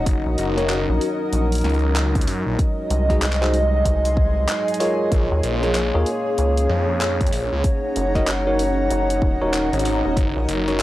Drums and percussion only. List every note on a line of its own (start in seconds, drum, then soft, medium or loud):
0.06 kick loud
0.06 closed hi-hat medium
0.38 closed hi-hat medium
0.58 snare soft
0.58 closed hi-hat soft
0.70 clap loud
1.01 open hi-hat medium
1.33 closed hi-hat medium
1.52 closed hi-hat medium
1.55 closed hi-hat medium
1.58 closed hi-hat soft
1.61 snare soft
1.61 closed hi-hat soft
1.64 closed hi-hat soft
1.69 closed hi-hat soft
1.74 closed hi-hat soft
1.79 closed hi-hat soft
1.96 clap loud
1.96 closed hi-hat medium
2.15 kick loud
2.15 closed hi-hat medium
2.21 closed hi-hat medium
2.27 open hi-hat medium
2.59 kick loud
2.59 closed hi-hat medium
2.91 closed hi-hat medium
3.10 kick medium
3.10 snare soft
3.10 closed hi-hat soft
3.22 clap loud
3.22 closed hi-hat medium
3.33 clap loud
3.43 clap medium
3.54 open hi-hat medium
3.85 kick medium
3.85 closed hi-hat medium
4.05 closed hi-hat medium
4.17 kick loud
4.49 clap loud
4.49 closed hi-hat medium
4.68 closed hi-hat soft
4.74 closed hi-hat medium
4.80 open hi-hat medium
5.12 kick loud
5.12 closed hi-hat medium
5.43 closed hi-hat medium
5.63 snare soft
5.63 closed hi-hat soft
5.75 clap loud
5.75 closed hi-hat medium
6.06 open hi-hat medium
6.38 closed hi-hat medium
6.57 closed hi-hat medium
6.70 snare soft
7.01 clap loud
7.01 closed hi-hat medium
7.21 kick loud
7.21 closed hi-hat soft
7.26 closed hi-hat medium
7.33 open hi-hat medium
7.64 kick loud
7.64 closed hi-hat medium
7.96 closed hi-hat medium
8.15 kick medium
8.15 snare soft
8.15 closed hi-hat soft
8.27 clap loud
8.27 closed hi-hat medium
8.59 open hi-hat medium
8.90 closed hi-hat medium
9.10 closed hi-hat medium
9.22 kick loud
9.54 clap loud
9.54 closed hi-hat medium
9.73 closed hi-hat soft
9.79 closed hi-hat medium
9.85 open hi-hat medium
10.17 kick loud
10.17 closed hi-hat medium
10.49 closed hi-hat medium
10.68 snare soft
10.68 closed hi-hat soft